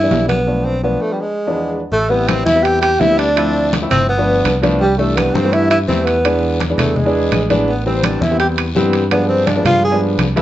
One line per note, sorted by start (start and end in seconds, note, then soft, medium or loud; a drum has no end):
0.00 0.34 E3 medium
0.00 0.34 G3 medium
0.00 0.35 B3 medium
0.00 0.35 D4 medium
0.00 0.27 E4 loud
0.11 0.96 B1 medium
0.11 high conga medium
0.11 low timbale medium
0.11 short guiro medium
0.28 0.67 B3 loud
0.28 high conga medium
0.28 high timbale medium
0.28 short guiro medium
0.47 0.73 F3 medium
0.47 0.73 A3 medium
0.47 0.73 B3 medium
0.47 0.73 D4 medium
0.66 0.83 C4 medium
0.83 1.20 F3 medium
0.83 1.20 A3 medium
0.83 1.03 B3 medium
0.83 1.20 B3 medium
0.83 1.20 D4 medium
1.01 1.14 A3 medium
1.13 1.22 G3 medium
1.20 1.75 G#3 medium
1.47 1.79 E2 medium
1.47 1.79 F3 medium
1.47 1.79 G#3 medium
1.47 1.79 B3 medium
1.47 1.79 D4 medium
1.92 2.43 A1 medium
1.92 2.11 A3 loud
1.92 2.11 A4 medium
1.92 high conga soft
1.92 long guiro medium
2.10 2.42 G3 medium
2.10 2.30 B3 medium
2.10 2.42 B3 medium
2.10 2.42 C4 medium
2.10 2.43 E4 medium
2.10 2.30 B4 medium
2.10 high conga soft
2.28 2.45 C4 medium
2.28 2.46 C5 medium
2.28 high conga medium
2.28 high timbale loud
2.28 short guiro medium
2.28 claves medium
2.45 2.97 E2 medium
2.45 2.64 E4 loud
2.45 2.67 E5 medium
2.45 high conga medium
2.45 short guiro medium
2.55 2.87 G3 medium
2.55 2.87 B3 medium
2.55 2.88 C4 medium
2.55 2.88 E4 medium
2.63 2.80 G4 medium
2.63 2.82 G5 loud
2.63 high conga soft
2.63 high timbale medium
2.63 long guiro medium
2.81 3.01 G4 loud
2.81 3.03 G5 medium
2.81 high conga soft
2.81 high timbale loud
2.81 claves medium
3.00 3.85 D2 medium
3.00 3.26 G3 medium
3.00 3.26 B3 medium
3.00 3.26 C4 medium
3.00 3.20 E4 loud
3.00 3.26 E4 medium
3.00 3.21 E5 medium
3.00 high conga loud
3.00 low timbale medium
3.00 short guiro medium
3.18 3.73 D4 loud
3.18 3.73 D5 medium
3.18 high conga soft
3.18 high timbale medium
3.18 short guiro medium
3.36 3.68 F3 medium
3.36 3.68 A3 medium
3.36 3.69 C4 medium
3.36 3.69 E4 loud
3.36 high conga soft
3.36 high timbale loud
3.36 long guiro medium
3.36 claves medium
3.55 high conga soft
3.73 high conga loud
3.73 high timbale medium
3.73 short guiro medium
3.82 4.07 F3 medium
3.82 4.07 A3 medium
3.82 4.08 C4 medium
3.82 4.08 E4 medium
3.90 4.41 G1 loud
3.90 4.08 C4 loud
3.90 4.07 C5 medium
3.90 high conga soft
3.90 low conga medium
3.90 high timbale medium
3.90 short guiro medium
3.90 claves medium
4.08 4.59 B3 loud
4.08 4.59 B4 medium
4.08 high conga soft
4.08 long guiro medium
4.17 4.49 F3 medium
4.17 4.50 A3 medium
4.17 4.50 B3 medium
4.17 4.50 D4 medium
4.27 high conga soft
4.45 5.29 C2 medium
4.45 high conga medium
4.45 high timbale medium
4.45 short guiro medium
4.45 claves medium
4.62 4.81 F3 loud
4.62 4.81 A3 medium
4.62 4.81 B3 medium
4.62 4.81 D4 loud
4.62 high conga medium
4.62 high timbale medium
4.62 short guiro medium
4.80 4.97 G3 medium
4.80 4.98 G4 medium
4.80 high conga soft
4.80 long guiro medium
4.98 5.30 E3 medium
4.98 5.30 G3 medium
4.98 5.17 A3 medium
4.98 5.31 A3 medium
4.98 5.31 D4 medium
4.98 5.18 A4 medium
4.98 high conga soft
5.16 5.36 B3 medium
5.16 5.36 B4 medium
5.16 high conga loud
5.16 high timbale medium
5.16 short guiro medium
5.16 claves medium
5.34 5.85 G2 loud
5.34 5.54 C4 loud
5.34 5.54 C5 medium
5.34 high conga loud
5.34 short guiro medium
5.43 5.75 E3 medium
5.43 5.76 G3 medium
5.43 5.76 A3 medium
5.43 5.76 B3 medium
5.53 5.70 E4 loud
5.53 5.70 E5 medium
5.53 high conga soft
5.53 high timbale medium
5.53 long guiro medium
5.70 5.79 E4 medium
5.70 5.77 E5 medium
5.70 high conga soft
5.70 high timbale loud
5.70 claves medium
5.88 6.73 E2 loud
5.88 6.14 E3 medium
5.88 6.14 G3 medium
5.88 6.14 A3 medium
5.88 6.06 C4 medium
5.88 6.15 E4 loud
5.88 6.07 C5 medium
5.88 high conga medium
5.88 short guiro medium
6.05 6.60 B3 medium
6.05 6.60 B4 medium
6.05 high conga soft
6.05 high timbale medium
6.05 short guiro medium
6.24 6.56 E3 medium
6.24 6.56 G#3 medium
6.24 6.57 B3 medium
6.24 6.57 D4 medium
6.24 high conga soft
6.24 high timbale loud
6.24 long guiro medium
6.24 claves medium
6.42 high conga soft
6.60 high conga medium
6.60 high timbale medium
6.60 short guiro medium
6.69 6.95 E3 medium
6.69 6.95 G#3 medium
6.69 6.95 B3 medium
6.69 6.95 D4 medium
6.78 7.28 E2 loud
6.78 6.97 A3 medium
6.78 6.98 A4 medium
6.78 high conga soft
6.78 low conga medium
6.78 high timbale loud
6.78 short guiro medium
6.78 claves medium
6.96 7.50 G#3 medium
6.96 7.51 G#4 medium
6.96 high conga soft
6.96 low conga medium
6.96 long guiro medium
7.05 7.37 E3 medium
7.05 7.37 G#3 medium
7.05 7.37 B3 medium
7.05 7.38 D4 loud
7.15 high conga soft
7.32 8.16 A1 loud
7.32 high conga medium
7.32 high timbale medium
7.32 short guiro medium
7.32 claves medium
7.50 7.68 E3 medium
7.50 7.68 G#3 medium
7.50 7.69 B3 medium
7.50 7.69 D4 loud
7.50 high conga medium
7.50 high timbale medium
7.50 short guiro medium
7.68 7.85 B3 medium
7.68 7.85 B4 medium
7.68 high conga soft
7.68 long guiro medium
7.86 8.18 E3 medium
7.86 8.18 G3 medium
7.86 8.18 B3 medium
7.86 8.06 C4 medium
7.86 8.18 C4 medium
7.86 8.06 C5 medium
7.86 high conga soft
8.04 8.23 D4 medium
8.04 8.24 D5 medium
8.04 high conga loud
8.04 high timbale loud
8.04 short guiro medium
8.04 claves medium
8.21 8.72 E2 loud
8.21 8.39 E4 medium
8.21 8.39 E5 medium
8.21 high conga loud
8.21 short guiro medium
8.30 8.62 E3 medium
8.30 8.63 G3 medium
8.30 8.63 B3 medium
8.30 8.63 C4 medium
8.40 8.48 G4 medium
8.40 8.46 G5 medium
8.40 high conga soft
8.40 high timbale medium
8.40 long guiro medium
8.58 high conga soft
8.58 high timbale loud
8.58 claves medium
8.75 9.59 G2 medium
8.75 9.01 E3 medium
8.75 9.01 G3 medium
8.75 9.01 B3 medium
8.75 9.01 C4 loud
8.75 high conga medium
8.75 short guiro medium
8.93 high conga soft
8.93 high timbale medium
8.93 short guiro medium
9.11 9.43 F3 medium
9.11 9.43 G#3 medium
9.11 9.28 B3 medium
9.11 9.43 B3 medium
9.11 9.44 D4 medium
9.11 9.29 B4 medium
9.11 high conga soft
9.11 high timbale medium
9.11 long guiro medium
9.11 claves medium
9.29 9.49 C4 medium
9.29 9.48 C5 medium
9.29 high conga soft
9.47 9.65 D4 medium
9.47 9.65 D5 medium
9.47 high conga loud
9.47 high timbale medium
9.47 short guiro medium
9.56 9.81 F3 medium
9.56 9.82 G#3 medium
9.56 9.82 B3 medium
9.56 9.82 D4 medium
9.65 10.15 G2 loud
9.65 9.82 F4 loud
9.65 9.82 F5 medium
9.65 high conga soft
9.65 low conga medium
9.65 high timbale medium
9.65 short guiro medium
9.65 claves medium
9.83 10.01 G#4 loud
9.83 10.00 G#5 medium
9.83 high conga soft
9.83 long guiro medium
9.91 10.23 F3 medium
9.91 10.24 G#3 medium
9.91 10.24 B3 medium
9.91 10.24 D4 medium
10.01 high conga soft
10.19 10.42 C2 loud
10.19 high conga loud
10.19 high timbale medium
10.19 short guiro medium
10.19 claves medium
10.36 10.42 F3 loud
10.36 10.42 G#3 medium
10.36 10.42 B3 medium
10.36 10.42 E4 loud
10.36 high conga medium
10.36 high timbale medium
10.36 short guiro medium